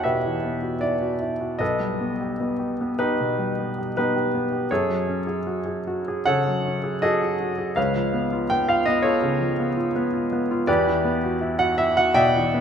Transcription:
Already playing: E2 E3 B3 E4 F#4 G4 B4 C#5 D5 E5 F#5 G5 A5
0.04 B2 G4 B4 E5
0.26 E3
0.44 B3
0.62 F#4
0.81 E4 D5
1.02 F#4
1.21 E4
1.40 F#4
1.59 B1 A4 B4 D#5
1.80 G3
2.00 B3
2.21 G4
2.40 B3
2.59 G4
2.81 B3
2.99 D#4 G4 B4
3.20 B2
3.39 G3
3.59 B3
3.78 G4
3.97 B3 D#4 G4 B4
4.16 G4
4.35 B3
4.53 G4
4.71 F#2 G#4 A4 C#5
4.90 F#3
5.07 C#4
5.27 G#4
5.47 F#4
5.66 G#4
5.87 F#4
6.08 G#4
6.25 C#3 A4 C#5 F#5
6.47 F#3
6.65 C#4
6.84 G#4
7.02 F#4 G#4 A4 D#5
7.22 G#4
7.40 F#4
7.58 G#4
7.76 C#2 B4 C#5 F5
7.96 F3
8.13 B3
8.33 F4
8.50 B3 G5
8.69 F4 F5
8.86 B3 D#5
9.02 F4 A4 C#5
9.22 C#3
9.41 F3
9.60 B3
9.77 F4
9.96 B3
10.14 F4
10.32 B3
10.51 F4
10.67 E2 G4 B4 D5
10.88 E3
11.05 B3
11.24 F#4
11.41 E4
11.59 F#4 F#5
11.78 E4 E5
11.97 F#4 F#5
12.14 B2 D5 E5 G5
12.36 E3
12.54 B3

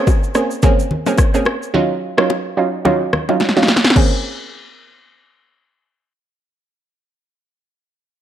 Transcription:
Already playing: A#3 C4 C#4 G#4
0.07 kick, high bongo, shaker
0.24 shaker
0.35 A#3 C4 C#4 G#4, cross-stick, shaker
0.51 shaker
0.62 A#3 C4 C#4 G#4, kick, low bongo, low conga, shaker
0.80 shaker
0.91 low conga
1.06 A#3 C4 C#4 G#4, low bongo, shaker
1.18 kick, cross-stick, high bongo, shaker
1.34 A#3 C4 C#4 G#4, shaker
1.45 cross-stick, high bongo
1.63 shaker
1.74 F#3 C#4 D#4 F4, low conga
2.17 F#3 C#4 D#4 F4, cross-stick
2.30 high bongo
2.57 F#3 C#4 D#4 F4
2.85 F#3 C#4 D#4 F4, low bongo, low conga
3.13 cross-stick, low conga
3.29 F#3 C#4 D#4 F4, low bongo
3.40 snare, high bongo
3.49 snare
3.56 F#3 C#4 D#4 F4, snare
3.63 snare
3.68 snare, high bongo
3.76 snare
3.84 snare
3.90 snare
3.95 A#3 C4 C#4 G#4, kick, crash, low conga

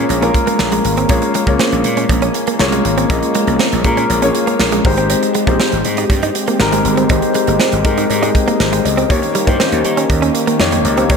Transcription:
Already playing: G#3 A#3 C#4 F4 G#4 C#5
0.09 A#1, closed hi-hat, cowbell
0.22 A#3 C#4 F4 G#4 A#4, closed hi-hat
0.34 muted clean electric guitar stroke, kick, closed hi-hat
0.47 A#3, closed hi-hat
0.59 A#1, snare, cowbell
0.72 G#3, closed hi-hat
0.85 G#1, muted clean electric guitar stroke, closed hi-hat
0.97 C4, closed hi-hat
1.09 A#1 A#3 F4 G#4 C#5, kick, closed hi-hat, cowbell
1.22 muted clean electric guitar stroke, closed hi-hat
1.34 G#3, closed hi-hat
1.47 C#2 A#3 F4 G#4 C#5, kick, closed hi-hat
1.59 C4, snare, cowbell
1.72 A#1, closed hi-hat
1.84 A#2, muted clean electric guitar stroke, closed hi-hat
1.97 C#4, closed hi-hat
2.09 A#1, kick, closed hi-hat, cowbell
2.22 C#4, closed hi-hat
2.34 muted clean electric guitar stroke, closed hi-hat
2.47 A#3, closed hi-hat
2.59 C2 A#3 F4 G#4 C#5, snare, cowbell
2.72 G#3, closed hi-hat
2.85 G#1, muted clean electric guitar stroke, closed hi-hat
2.98 C4, closed hi-hat
3.09 A#1 A#3 F4 G#4 D#5, kick, closed hi-hat, cowbell
3.23 muted clean electric guitar stroke, closed hi-hat
3.35 G#3, closed hi-hat
3.47 C2 A#3, closed hi-hat
3.59 C4, snare, cowbell
3.72 A#1, closed hi-hat
3.84 A#2 A#3 F4 G#4 A#4, muted clean electric guitar stroke, kick, closed hi-hat
3.97 C#4, closed hi-hat
4.10 A#1, closed hi-hat, cowbell
4.22 A#3 C#4 F4 G#4 C#5, closed hi-hat
4.35 muted clean electric guitar stroke, closed hi-hat
4.47 A#3, closed hi-hat
4.60 A#1, snare, cowbell
4.72 G#3, closed hi-hat
4.84 G#1 G#3 C4 D#4 G4 C5, muted clean electric guitar stroke, kick, open hi-hat
4.97 C4, closed hi-hat
5.10 closed hi-hat, cowbell
5.23 muted clean electric guitar stroke, closed hi-hat
5.34 G#3, closed hi-hat
5.47 A#1 G#3 A#3 D#4 G4 C5, kick, closed hi-hat
5.60 C4, snare, cowbell
5.72 G#1, closed hi-hat
5.85 G#2, muted clean electric guitar stroke, closed hi-hat
5.97 D#4, closed hi-hat
6.10 G2, kick, closed hi-hat, cowbell
6.23 D#4, closed hi-hat
6.35 muted clean electric guitar stroke, closed hi-hat
6.47 A#3, closed hi-hat
6.59 G#1 G#3 D#4 G4 A#4, snare, cowbell
6.72 G#3, closed hi-hat
6.85 G1, muted clean electric guitar stroke, closed hi-hat
6.97 C4, closed hi-hat
7.09 G#1 G#3 D#4 G4 C5, kick, closed hi-hat, cowbell
7.22 muted clean electric guitar stroke, closed hi-hat
7.34 G#3, closed hi-hat
7.47 G1 A#3, closed hi-hat
7.60 C4, snare, cowbell
7.72 G#1, closed hi-hat
7.84 G#2 G#3 D#4 G4 A#4, muted clean electric guitar stroke, kick, closed hi-hat
7.97 D#4, closed hi-hat
8.10 G#2, closed hi-hat, cowbell
8.22 G#3 D#4 G4 D#5, closed hi-hat
8.35 muted clean electric guitar stroke, kick, closed hi-hat
8.48 A#3, closed hi-hat
8.60 G#1 G#4 C5, snare, cowbell
8.73 G#3, closed hi-hat
8.85 C#2 C5 D#5, muted clean electric guitar stroke, closed hi-hat
8.97 C4, closed hi-hat
9.09 D#2 D#3 A#3 C#4 D#4 G4 C#5, kick, closed hi-hat, cowbell
9.22 muted clean electric guitar stroke, closed hi-hat
9.35 G3, closed hi-hat
9.47 G2 A#3 D#4 G4 C5, kick, closed hi-hat
9.60 C4, snare, cowbell
9.72 D#2, closed hi-hat
9.85 D#3, muted clean electric guitar stroke, closed hi-hat
9.97 C#4, closed hi-hat
10.10 D#2, kick, closed hi-hat, cowbell
10.22 C#4, closed hi-hat
10.35 muted clean electric guitar stroke, closed hi-hat
10.47 A#3, closed hi-hat
10.59 F2 A#3 D#4 G4 C#5, snare, cowbell
10.72 G3, closed hi-hat
10.85 C#2, muted clean electric guitar stroke, closed hi-hat
10.97 C4, closed hi-hat
11.09 D#2 C3 A#3 D#4 G4 C#5, kick, closed hi-hat, cowbell

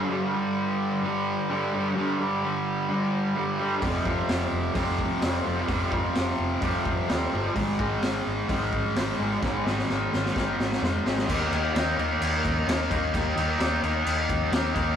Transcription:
Already playing: G3
0.09 G2 D3 G3
0.33 D3 G3
1.02 G2 D3 G3
1.49 G2 D3 G3
1.73 D3 G3
1.96 G2 D3 G3
2.19 D3 G3
2.89 G2 D3 G3
3.35 G2 D3 G3
3.59 D3 G3
3.82 F1 F2 C3 F3, kick, open hi-hat
4.05 F1 C3 F3, kick
4.28 F1, snare, open hi-hat
4.51 F1
4.75 F1 F2 C3 F3, kick, open hi-hat
4.99 kick
5.21 F1 F2 C3 F3, snare, open hi-hat
5.44 F1 C3 F3
5.68 F1 F2 C3 F3, kick, open hi-hat
5.92 F1 C3 F3, kick
6.15 F1, snare, open hi-hat
6.39 F1
6.61 F1 F2 C3 F3, kick, open hi-hat
6.85 F1, kick
7.09 D#2 F2 C3 F3, snare, open hi-hat
7.32 G1 C3 F3
7.55 G#1 G#2 D#3 G#3, kick, open hi-hat
7.79 G#1 D#3 G#3, kick
8.02 G#1, snare, open hi-hat
8.26 G#1
8.49 G#1 G#2 D#3 G#3, kick, open hi-hat
8.73 kick
8.96 G#1 G#2 D#3 G#3, snare, open hi-hat
9.20 G#1 D#3 G#3
9.43 G#1 G#2 D#3 G#3, kick, snare
9.66 G#1 D#3 G#3, snare
9.78 snare
9.89 G#1, snare
10.14 G#1, snare
10.26 snare
10.35 G#1 G#2 D#3 G#3, kick, snare
10.59 G#1, snare
10.72 snare
10.82 F2 G#2 D#3 G#3, snare
11.05 G#1 D#3 G#3, snare
11.18 snare
11.28 D#2 D#3 A#3 D#4, kick, crash
11.52 D#2 A#3 D#4, crash
11.75 D#2 D#3 A#3 D#4, snare, crash
11.98 D#2 A#3 D#4, crash
12.21 D#2, crash
12.45 D#2, kick, crash
12.67 D#2 D#3 A#3 D#4, snare, crash
12.90 D#2 A#3 D#4, kick, crash
13.14 D#2 D#3 A#3 D#4, kick, crash
13.36 D#2 A#3 D#4, crash
13.59 D#2 D#3 A#3 D#4, snare, crash
13.82 D#2 A#3 D#4, crash
14.06 D#2, crash
14.29 D#2, kick, crash
14.52 D#2 D#3 A#3 D#4, snare, crash
14.75 D#2 A#3 D#4, kick, crash

